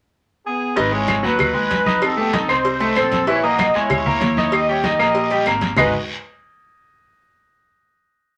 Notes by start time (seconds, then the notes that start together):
0.46 B3 G#4
0.76 G#1 D#3 D#4 B4 D#5, cowbell, high conga, long guiro
0.91 G#3 E4 G#4 C#5 G#5, high conga
1.08 cowbell, high conga, short guiro, claves
1.23 D#2 F#3 D#4 F#4 B4 F#5, short guiro
1.39 cowbell, high conga, low conga, long guiro, claves
1.54 G#3 G#4 G#5, high conga
1.70 F2, cowbell, high conga, short guiro
1.86 D#4 D#5 D#6, high conga, short guiro
2.02 C4 A4, cowbell, high conga, long guiro, claves
2.17 A3 B3 G4 A4 A5, high conga
2.33 C4 D#4 A4 D#5 D#6, cowbell, high conga, short guiro
2.48 C2 C4 D#4 C5 C6, high conga, short guiro, claves
2.65 cowbell, high conga, long guiro
2.80 A3 A4 A5, cowbell, high conga
2.95 A#1 C4 A4 C5 C6, cowbell, high conga, short guiro, claves
3.11 cowbell, high conga, short guiro
3.27 E3 E4 C#5 E5, cowbell, high conga, long guiro
3.43 A#3 F#4 A#4 D#5 A#5, high conga
3.59 cowbell, high conga, short guiro, claves
3.74 E2 G#3 E4 G#4 C#5 G#5, high conga, short guiro
3.90 cowbell, high conga, low conga, long guiro, claves
4.06 A#3 A#4 A#5, high conga, low conga
4.21 D#2, cowbell, high conga, short guiro
4.37 D#4 D#5 D#6, high conga, short guiro
4.52 G4 D#5, cowbell, high conga, long guiro, claves
4.68 G3 E4 G4 C#5 G5, high conga
4.84 D#4 G4 D#5 D#6, cowbell, high conga, short guiro
4.99 A#1 A#3 G4 A#4 D#5 A#5, high conga, short guiro, claves
5.15 cowbell, high conga, long guiro
5.30 G3 G4 G5, cowbell, high conga
5.45 G#1 A#3 A#4 A#5, cowbell, high conga, short guiro, claves
5.61 cowbell, high conga, short guiro
5.77 G#1 G#3 D#4 F#4 G#4 B4 D#5, low bongo, low conga, long guiro, claves